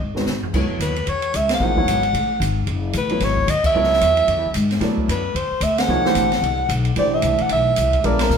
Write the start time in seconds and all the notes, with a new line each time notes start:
0.00 G#1
0.15 D#3 G#3 C#4 F#4 B4, snare
0.26 G#1, snare, hi-hat pedal
0.43 floor tom
0.53 C#2 F#3 B3 E4 A4 C#5, kick, crash
0.69 muted upright bass stroke
0.79 D#2 B4, hi-hat pedal, ride
0.96 ride
1.07 E2 C#5, ride
1.22 ride
1.34 C#2 E5, hi-hat pedal, ride
1.49 snare, ride
1.55 F#5
1.60 A1 F3 A#3 D#4 G#4 C5
1.76 F#3 B3 E4 A4 C#5, kick
1.86 G#1, hi-hat pedal, ride
2.03 ride
2.13 A1, ride
2.40 G#1, hi-hat pedal, ride
2.67 F#1, ride
2.93 A1, hi-hat pedal, ride
2.98 B4
3.09 F#3 B3 E4 A4 C#5, ride
3.20 G#1, snare, ride
3.25 C#5
3.37 kick
3.47 D#2 D#5, hi-hat pedal, ride
3.64 E5, kick, crash
3.74 C#2 F#3 B3 E4 A4 C#5
3.84 snare
3.93 snare
4.01 E2, hi-hat pedal, ride
4.17 ride
4.28 F#2, ride
4.37 E2
4.45 C#2
4.54 G#2, hi-hat pedal, ride
4.71 snare, ride
4.80 A2 F#3 B3 E4 A4 D5, snare, ride
4.98 kick
5.08 F#2 B4, hi-hat pedal, ride
5.35 E2 C5, ride
5.51 muted upright bass stroke
5.61 D2 E5, hi-hat pedal, ride
5.78 F#5, snare, ride
5.88 C2 F3 A#3 D#4 G#4 C#5
6.04 E3 A3 D4 G4 C5, muted upright bass stroke, snare
6.15 A1, hi-hat pedal, ride
6.32 snare, ride
6.42 C2, ride
6.69 B1, hi-hat pedal, ride
6.85 ride
6.96 A1 E3 A3 D4 G4 C5 D5, ride
7.15 E5
7.22 C2, hi-hat pedal, ride
7.38 F#5, muted upright bass stroke, ride
7.49 B1 E5, ride
7.76 C2, hi-hat pedal, ride
7.93 kick, ride
8.04 A#1 G#3 B3 D4 F4 A#4 D5, ride
8.19 A#4, snare, ride
8.30 A#2, hi-hat pedal